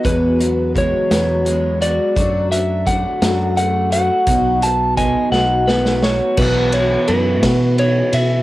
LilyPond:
<<
  \new Staff \with { instrumentName = "Electric slide guitar" } { \time 6/8 \key b \mixolydian \tempo 4. = 57 b'4 cis''4. d''8~ | d''8 e''8 fis''4 fis''8 fis''8~ | fis''8 a''8 <dis'' gis''>8 fis''8 b'8 cis''8 | b'8 cis''8 b'4 cis''8 e''8 | }
  \new Staff \with { instrumentName = "Steel-string acoustic guitar" } { \time 6/8 \key b \mixolydian <e, b, fis gis b fis'>8 <fis gis b fis'>8 <fis gis b fis'>8 <e, b, fis gis b fis'>8 <fis gis b fis'>8 <fis gis b fis'>8 | <fis a d' fis'>8 <a d' fis'>8 <fis a d' fis'>8 <fis a d' fis'>8 <fis a d' fis'>8 <a d' fis'>8 | <b, fis b dis' fis'>8 <b dis' fis'>8 <fis b dis' fis'>8 <b, fis b dis' fis'>8 <fis b dis' fis'>8 <b dis' fis'>8 | <b, e b e' fis'>4 <e b e' fis'>8 <b, e b e' fis'>4 <b e' fis'>8 | }
  \new Staff \with { instrumentName = "Clean electric guitar" } { \clef bass \time 6/8 \key b \mixolydian e,8 fis8 gis8 fis8 gis8 fis'8 | fis8 fis8 a8 fis8 a8 fis'8 | b,8 fis8 b8 fis8 b8 fis'8 | <b, e b e' fis'>2. | }
  \new Staff \with { instrumentName = "Fingered electric bass" } { \clef bass \time 6/8 \key b \mixolydian e,4. e,4. | fis,4. fis,4. | b,,4. b,,4. | b,,4 fis,8 b,4 b,8 | }
  \new DrumStaff \with { instrumentName = "Drums" } \drummode { \time 6/8 <hh bd>8 hh8 <hh bd>8 <hh sn>8 hh8 hh8 | <hh bd>8 hh8 <hh bd>8 <hh sn>8 hh8 hh8 | <hh bd>8 hh8 <hh bd>8 sn8 sn16 sn16 sn8 | <cymc bd>8 cymr8 cymr8 <bd cymr sn>8 cymr8 cymr8 | }
>>